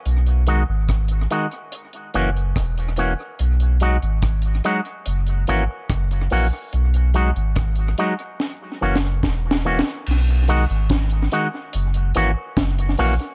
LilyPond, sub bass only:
\new Staff \with { instrumentName = "Sub bass" } { \clef bass \time 4/4 \key b \major \tempo 4 = 72 b,,8. gis,,8. r4 fis,,8 e,,8. r16 | b,,8. gis,,8. r8 fis,,8 gis,,16 r16 fis,,8 ais,,16 r16 | b,,8. gis,,8. r4 fis,,8 e,,8. r16 | b,,8. gis,,8. r8 fis,,8 gis,,16 r16 fis,,8 ais,,16 r16 | }